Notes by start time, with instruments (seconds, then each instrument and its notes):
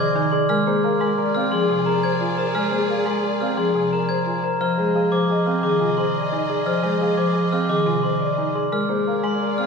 Already playing: string section G#4 D#5, marimba D5, glockenspiel G#6
0.15 marimba D#3 G#5, grand piano D#4
0.32 grand piano G#4, marimba D5, glockenspiel C6
0.49 marimba G#3 A#4, string section G#4 D5, glockenspiel F6
0.67 marimba A#3 G#4, grand piano C5
0.84 grand piano A#4, marimba F5
1.00 marimba G#3 A#4, glockenspiel C6
1.18 grand piano A#4, marimba D5
1.35 grand piano C4, marimba F5, glockenspiel F6
1.52 marimba F3 G#4, glockenspiel C6
1.69 marimba C3 G#5, grand piano G#4
1.86 grand piano A#4, marimba A#4, glockenspiel A#5
2.03 marimba C5, glockenspiel G#6
2.21 grand piano F4, marimba G#5
2.38 grand piano A#4, marimba C5, glockenspiel A#5
2.55 marimba G#3 A#4, glockenspiel F6
2.72 marimba A#3 G#4, grand piano C5
2.89 grand piano A#4, marimba F5
3.06 marimba G#3 A#4, glockenspiel C6
3.24 grand piano A#4, marimba D5
3.41 grand piano C4, marimba F5, glockenspiel F6
3.57 marimba F3 G#4, glockenspiel C6
3.75 marimba C3 G#5, grand piano G#4
3.92 marimba A#4, grand piano A#4, glockenspiel A#5
4.09 marimba C5, glockenspiel G#6
4.26 grand piano F4, marimba G#5
4.44 grand piano A#4, marimba C5, glockenspiel A#5
4.60 marimba F3 C5, string section G#4 D#5, glockenspiel F6
4.78 marimba G#3 G#4, grand piano C5
4.95 grand piano G#4, marimba F5
5.12 marimba F3 C5, glockenspiel D6
5.29 grand piano G#4, marimba D#5
5.46 grand piano C4, marimba F5, glockenspiel F6
5.63 marimba D#3 G#4, glockenspiel D6
5.80 marimba C3 G#5, grand piano F4
5.97 grand piano G#4, marimba C5, glockenspiel C6
6.15 marimba D5
6.32 grand piano D#4, marimba G#5
6.49 grand piano G#4, marimba D5, glockenspiel C6
6.66 marimba F3 C5, glockenspiel F6
6.83 marimba G#3 G#4, grand piano C5
7.01 grand piano G#4, marimba F5
7.17 marimba F3 C5, glockenspiel D6
7.35 grand piano G#4
7.52 grand piano C4, marimba F5, glockenspiel F6
7.69 marimba D#3 G#4, glockenspiel D6
7.86 marimba C3 G#5, grand piano F4
8.03 grand piano G#4, marimba C5, glockenspiel C6
8.20 marimba D5
8.38 grand piano D#4, marimba G#5
8.55 grand piano G#4, marimba D5, glockenspiel C6
8.72 marimba G#3 A#4, string section G#4 D5, glockenspiel F6
8.89 marimba A#3 G#4, grand piano C5
9.07 grand piano A#4, marimba F5
9.24 marimba G#3 A#4, glockenspiel C6
9.41 grand piano A#4, marimba D5
9.58 grand piano C4, marimba F5, glockenspiel F6